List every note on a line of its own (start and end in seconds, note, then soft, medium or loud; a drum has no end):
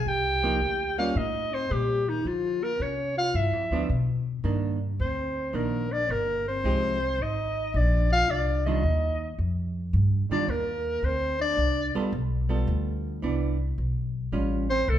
0.06 0.59 C2 medium
0.06 0.98 G4 medium
0.06 0.98 G5 medium
0.43 0.59 F3 medium
0.43 0.59 A#3 medium
0.43 0.60 D#4 medium
0.61 1.14 D2 medium
0.98 1.14 G3 medium
0.98 1.14 A#3 medium
0.98 1.15 C#4 medium
0.98 1.17 F4 medium
0.98 1.19 F5 medium
1.16 1.69 A2 medium
1.16 1.53 D#4 medium
1.16 1.55 D#5 medium
1.52 1.72 C4 medium
1.52 1.74 C5 medium
1.70 2.24 A#2 medium
1.70 2.09 G3 medium
1.70 2.11 G4 medium
2.07 2.27 D#3 medium
2.07 2.29 D#4 medium
2.25 2.78 D3 medium
2.25 2.63 F3 medium
2.25 2.65 F4 medium
2.62 2.82 A#3 medium
2.62 2.84 A#4 medium
2.79 3.33 C3 medium
2.79 3.17 C#4 medium
2.79 3.18 C#5 medium
3.17 3.38 F4 medium
3.17 3.37 F5 loud
3.34 3.53 G2 medium
3.34 3.91 E4 medium
3.34 3.90 E5 medium
3.53 3.70 F2 medium
3.71 3.88 D2 medium
3.71 3.88 F3 medium
3.71 3.88 B3 medium
3.71 3.89 D4 medium
3.90 4.43 B2 medium
4.44 4.97 G2 medium
4.44 4.78 D#3 medium
4.44 4.78 A#3 medium
4.44 4.78 D4 medium
5.00 5.53 D2 medium
5.00 5.56 C4 medium
5.00 5.57 C5 medium
5.53 6.08 A#1 medium
5.53 5.87 D#3 medium
5.53 5.94 A#3 medium
5.53 5.88 A#3 soft
5.53 5.88 D4 medium
5.53 5.94 A#4 medium
5.92 6.13 D4 medium
5.92 6.12 D5 medium
6.09 6.62 G1 medium
6.09 6.48 A#3 medium
6.09 6.47 A#4 medium
6.48 7.23 C4 medium
6.48 7.24 C5 medium
6.64 7.17 C2 medium
6.64 6.98 F3 soft
6.64 6.98 G#3 medium
6.64 6.98 D#4 medium
6.64 6.98 G4 medium
7.19 7.72 G#1 medium
7.19 7.77 D#4 medium
7.19 7.78 D#5 medium
7.74 8.27 A#1 medium
7.74 8.11 D4 medium
7.74 8.12 D5 medium
8.12 8.32 F4 medium
8.12 8.32 F5 loud
8.28 8.82 C2 medium
8.28 8.66 D4 medium
8.28 8.66 D5 medium
8.66 8.82 D#3 medium
8.66 8.82 G3 medium
8.66 8.83 D4 medium
8.66 9.35 D#4 medium
8.66 8.83 F4 medium
8.66 9.35 D#5 medium
8.84 9.37 D#2 medium
9.39 9.92 F2 medium
9.93 10.28 G2 medium
10.30 10.47 D#3 medium
10.30 10.47 G3 medium
10.30 10.52 D4 medium
10.30 10.47 D4 medium
10.30 10.47 F4 medium
10.30 10.52 D5 loud
10.30 muted upright bass stroke soft
10.48 11.02 D#2 medium
10.48 11.06 A#3 medium
10.48 11.07 A#4 medium
11.03 11.56 D2 medium
11.03 11.39 C4 medium
11.03 11.41 C5 medium
11.40 11.91 D4 medium
11.40 11.92 D5 loud
11.57 11.92 C2 medium
11.95 12.11 G3 medium
11.95 12.11 B3 medium
11.95 12.11 F4 medium
11.95 12.12 A4 medium
11.95 muted upright bass stroke soft
12.12 12.66 B1 medium
12.49 13.19 G3 medium
12.49 13.19 B3 medium
12.49 13.19 F4 medium
12.49 13.19 A4 medium
12.67 13.21 D2 medium
13.22 13.76 C2 medium
13.22 13.56 E3 medium
13.22 13.57 B3 medium
13.22 13.57 D4 medium
13.78 14.31 B1 medium
14.32 14.86 A1 medium
14.32 14.66 G3 medium
14.32 14.66 C#4 medium
14.32 14.67 F4 medium
14.70 14.91 C4 medium
14.70 14.91 C5 loud
14.88 14.99 C2 medium
14.88 14.99 A3 medium
14.88 14.99 A4 medium